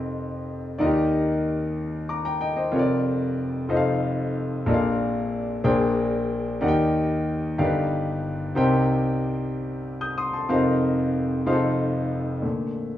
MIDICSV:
0, 0, Header, 1, 2, 480
1, 0, Start_track
1, 0, Key_signature, -2, "major"
1, 0, Tempo, 646552
1, 592, Time_signature, 6, 3, 24, 8
1, 9634, End_track
2, 0, Start_track
2, 0, Title_t, "Grand piano"
2, 0, Program_c, 0, 0
2, 0, Control_c, 0, 64, 127
2, 0, Note_on_c, 0, 29, 63
2, 0, Note_on_c, 0, 41, 65
2, 0, Note_on_c, 0, 60, 66
2, 0, Note_on_c, 0, 63, 62
2, 0, Note_on_c, 0, 65, 61
2, 0, Note_on_c, 0, 70, 63
2, 0, Note_on_c, 0, 75, 76
2, 558, Note_off_c, 0, 60, 0
2, 560, Note_off_c, 0, 63, 0
2, 561, Note_off_c, 0, 29, 0
2, 561, Note_off_c, 0, 41, 0
2, 561, Note_off_c, 0, 65, 0
2, 563, Note_off_c, 0, 70, 0
2, 582, Note_on_c, 0, 74, 67
2, 585, Note_on_c, 0, 63, 66
2, 590, Note_off_c, 0, 75, 0
2, 591, Note_on_c, 0, 39, 67
2, 591, Note_on_c, 0, 51, 66
2, 592, Note_on_c, 0, 65, 51
2, 596, Note_on_c, 0, 70, 59
2, 601, Note_on_c, 0, 75, 78
2, 603, Control_c, 0, 64, 0
2, 638, Note_on_c, 0, 67, 66
2, 641, Note_off_c, 0, 65, 0
2, 734, Control_c, 0, 64, 127
2, 1537, Note_off_c, 0, 75, 0
2, 1553, Note_on_c, 0, 86, 61
2, 1558, Note_on_c, 0, 82, 53
2, 1660, Note_off_c, 0, 82, 0
2, 1666, Note_off_c, 0, 86, 0
2, 1671, Note_on_c, 0, 82, 66
2, 1675, Note_on_c, 0, 79, 57
2, 1777, Note_off_c, 0, 79, 0
2, 1785, Note_off_c, 0, 82, 0
2, 1788, Note_on_c, 0, 79, 68
2, 1793, Note_on_c, 0, 75, 57
2, 1891, Note_off_c, 0, 75, 0
2, 1902, Note_on_c, 0, 75, 53
2, 1904, Note_off_c, 0, 79, 0
2, 1908, Note_on_c, 0, 72, 47
2, 1998, Note_off_c, 0, 74, 0
2, 1999, Note_off_c, 0, 63, 0
2, 2001, Note_off_c, 0, 39, 0
2, 2001, Note_off_c, 0, 51, 0
2, 2004, Note_off_c, 0, 70, 0
2, 2017, Note_on_c, 0, 65, 65
2, 2020, Note_on_c, 0, 29, 67
2, 2020, Note_on_c, 0, 41, 65
2, 2021, Note_on_c, 0, 70, 58
2, 2025, Note_on_c, 0, 73, 58
2, 2026, Note_off_c, 0, 67, 0
2, 2043, Control_c, 0, 64, 0
2, 2071, Note_on_c, 0, 74, 74
2, 2077, Note_off_c, 0, 73, 0
2, 2134, Note_off_c, 0, 75, 0
2, 2138, Note_off_c, 0, 72, 0
2, 2178, Control_c, 0, 64, 127
2, 2715, Note_off_c, 0, 29, 0
2, 2715, Note_off_c, 0, 41, 0
2, 2728, Note_off_c, 0, 65, 0
2, 2739, Note_on_c, 0, 63, 66
2, 2739, Note_on_c, 0, 65, 61
2, 2743, Note_on_c, 0, 29, 66
2, 2743, Note_on_c, 0, 69, 64
2, 2744, Note_on_c, 0, 41, 68
2, 2745, Note_on_c, 0, 72, 60
2, 2746, Note_off_c, 0, 70, 0
2, 2746, Note_on_c, 0, 75, 61
2, 2760, Control_c, 0, 64, 0
2, 2771, Note_off_c, 0, 74, 0
2, 2796, Note_on_c, 0, 77, 80
2, 2797, Note_off_c, 0, 75, 0
2, 2887, Control_c, 0, 64, 127
2, 3436, Note_off_c, 0, 29, 0
2, 3437, Note_off_c, 0, 41, 0
2, 3452, Note_off_c, 0, 65, 0
2, 3452, Note_off_c, 0, 69, 0
2, 3461, Note_on_c, 0, 62, 67
2, 3463, Note_on_c, 0, 34, 68
2, 3463, Note_on_c, 0, 65, 64
2, 3463, Note_on_c, 0, 69, 61
2, 3464, Note_off_c, 0, 63, 0
2, 3467, Note_off_c, 0, 72, 0
2, 3467, Note_on_c, 0, 70, 64
2, 3468, Note_on_c, 0, 46, 66
2, 3468, Note_on_c, 0, 75, 56
2, 3481, Control_c, 0, 64, 0
2, 3492, Note_off_c, 0, 77, 0
2, 3518, Note_off_c, 0, 75, 0
2, 3518, Note_on_c, 0, 77, 75
2, 3618, Control_c, 0, 64, 127
2, 4156, Note_off_c, 0, 34, 0
2, 4159, Note_off_c, 0, 46, 0
2, 4175, Note_off_c, 0, 70, 0
2, 4176, Note_off_c, 0, 62, 0
2, 4186, Note_off_c, 0, 65, 0
2, 4186, Note_off_c, 0, 69, 0
2, 4187, Note_on_c, 0, 70, 64
2, 4188, Note_on_c, 0, 46, 69
2, 4188, Note_on_c, 0, 62, 73
2, 4188, Note_on_c, 0, 68, 63
2, 4190, Note_on_c, 0, 34, 68
2, 4191, Note_on_c, 0, 72, 62
2, 4192, Note_on_c, 0, 79, 79
2, 4197, Control_c, 0, 64, 0
2, 4213, Note_off_c, 0, 77, 0
2, 4348, Control_c, 0, 64, 127
2, 4878, Note_off_c, 0, 46, 0
2, 4879, Note_off_c, 0, 34, 0
2, 4902, Note_off_c, 0, 70, 0
2, 4906, Note_on_c, 0, 63, 73
2, 4907, Note_on_c, 0, 67, 62
2, 4908, Note_off_c, 0, 62, 0
2, 4908, Note_off_c, 0, 68, 0
2, 4909, Note_off_c, 0, 72, 0
2, 4910, Note_off_c, 0, 79, 0
2, 4911, Note_on_c, 0, 51, 67
2, 4913, Note_on_c, 0, 70, 61
2, 4913, Note_on_c, 0, 74, 61
2, 4914, Note_on_c, 0, 39, 66
2, 4916, Note_on_c, 0, 78, 58
2, 4918, Control_c, 0, 64, 0
2, 4960, Note_off_c, 0, 78, 0
2, 4961, Note_on_c, 0, 79, 76
2, 5030, Control_c, 0, 64, 127
2, 5599, Note_off_c, 0, 51, 0
2, 5601, Note_off_c, 0, 39, 0
2, 5618, Note_off_c, 0, 70, 0
2, 5619, Note_off_c, 0, 63, 0
2, 5619, Note_off_c, 0, 67, 0
2, 5624, Note_off_c, 0, 74, 0
2, 5629, Note_on_c, 0, 70, 53
2, 5630, Note_on_c, 0, 43, 71
2, 5630, Note_on_c, 0, 67, 68
2, 5631, Note_on_c, 0, 63, 67
2, 5632, Note_on_c, 0, 31, 69
2, 5634, Note_on_c, 0, 77, 76
2, 5635, Note_on_c, 0, 74, 63
2, 5638, Control_c, 0, 64, 0
2, 5654, Note_off_c, 0, 79, 0
2, 5677, Note_off_c, 0, 70, 0
2, 5681, Note_on_c, 0, 71, 64
2, 5776, Control_c, 0, 64, 127
2, 6319, Note_off_c, 0, 43, 0
2, 6320, Note_off_c, 0, 31, 0
2, 6337, Note_off_c, 0, 63, 0
2, 6339, Note_off_c, 0, 67, 0
2, 6348, Note_on_c, 0, 63, 67
2, 6350, Note_on_c, 0, 67, 61
2, 6351, Note_off_c, 0, 74, 0
2, 6351, Note_off_c, 0, 77, 0
2, 6352, Note_on_c, 0, 36, 67
2, 6355, Note_on_c, 0, 70, 64
2, 6356, Note_on_c, 0, 48, 72
2, 6357, Control_c, 0, 64, 0
2, 6357, Note_on_c, 0, 72, 65
2, 6365, Note_on_c, 0, 79, 77
2, 6375, Note_off_c, 0, 71, 0
2, 6507, Control_c, 0, 64, 127
2, 7432, Note_on_c, 0, 91, 59
2, 7433, Note_on_c, 0, 87, 51
2, 7544, Note_off_c, 0, 87, 0
2, 7544, Note_off_c, 0, 91, 0
2, 7555, Note_on_c, 0, 87, 71
2, 7559, Note_on_c, 0, 84, 60
2, 7660, Note_off_c, 0, 84, 0
2, 7666, Note_off_c, 0, 87, 0
2, 7671, Note_on_c, 0, 84, 59
2, 7674, Note_on_c, 0, 81, 52
2, 7760, Note_off_c, 0, 63, 0
2, 7761, Note_off_c, 0, 67, 0
2, 7762, Note_off_c, 0, 36, 0
2, 7764, Note_off_c, 0, 48, 0
2, 7764, Note_off_c, 0, 70, 0
2, 7765, Note_off_c, 0, 72, 0
2, 7769, Note_off_c, 0, 79, 0
2, 7787, Note_on_c, 0, 63, 67
2, 7789, Note_on_c, 0, 65, 63
2, 7790, Note_on_c, 0, 41, 67
2, 7791, Note_on_c, 0, 29, 66
2, 7791, Note_on_c, 0, 70, 65
2, 7792, Note_on_c, 0, 72, 64
2, 7797, Note_on_c, 0, 77, 77
2, 7800, Control_c, 0, 64, 0
2, 7899, Note_off_c, 0, 84, 0
2, 7900, Note_off_c, 0, 81, 0
2, 7931, Control_c, 0, 64, 127
2, 8481, Note_off_c, 0, 41, 0
2, 8482, Note_off_c, 0, 29, 0
2, 8499, Note_off_c, 0, 63, 0
2, 8501, Note_off_c, 0, 65, 0
2, 8504, Note_off_c, 0, 72, 0
2, 8506, Note_off_c, 0, 77, 0
2, 8511, Note_on_c, 0, 63, 69
2, 8512, Note_off_c, 0, 70, 0
2, 8512, Note_on_c, 0, 65, 66
2, 8513, Note_on_c, 0, 29, 72
2, 8513, Note_on_c, 0, 41, 65
2, 8514, Note_on_c, 0, 68, 48
2, 8516, Note_on_c, 0, 72, 66
2, 8518, Note_on_c, 0, 77, 78
2, 8519, Control_c, 0, 64, 0
2, 8558, Note_on_c, 0, 69, 69
2, 8561, Note_off_c, 0, 68, 0
2, 8655, Control_c, 0, 64, 127
2, 9204, Note_off_c, 0, 29, 0
2, 9205, Note_off_c, 0, 41, 0
2, 9221, Note_on_c, 0, 46, 45
2, 9227, Note_on_c, 0, 50, 40
2, 9233, Note_off_c, 0, 63, 0
2, 9233, Note_off_c, 0, 65, 0
2, 9235, Note_off_c, 0, 72, 0
2, 9235, Note_on_c, 0, 57, 50
2, 9236, Note_off_c, 0, 77, 0
2, 9243, Control_c, 0, 64, 0
2, 9257, Note_off_c, 0, 69, 0
2, 9385, Control_c, 0, 64, 127
2, 9547, Note_off_c, 0, 46, 0
2, 9550, Note_off_c, 0, 50, 0
2, 9555, Note_off_c, 0, 57, 0
2, 9634, End_track
0, 0, End_of_file